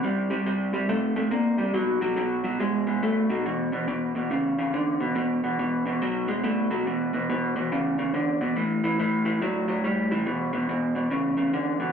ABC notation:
X:1
M:4/4
L:1/8
Q:"Swing" 1/4=141
K:Em
V:1 name="Clean electric guitar" clef=bass
[C,G,] [C,G,] [C,G,] [C,G,] [C,A,] [C,A,] [C,^A,] [C,G,] | [B,,F,] [B,,F,] [B,,F,] [B,,F,] [B,,^G,] [B,,G,] [B,,A,] [B,,F,] | [E,,B,,] [E,,B,,] [E,,B,,] [E,,B,,] [E,,^C,] [E,,C,] [E,,D,] [E,,B,,] | [E,,B,,] [E,,B,,] [E,,B,,] [E,,B,,] [B,,F,] [B,,^G,] [B,,A,] [B,,F,] |
[E,,B,,] [E,,B,,] [E,,B,,] [E,,B,,] [E,,^C,] [E,,C,] [E,,D,] [E,,B,,] | [A,,E,] [A,,E,] [A,,E,] [A,,E,] [A,,F,] [A,,F,] [A,,G,] [A,,E,] | [E,,B,,] [E,,B,,] [E,,B,,] [E,,B,,] [E,,^C,] [E,,C,] [E,,D,] [E,,B,,] |]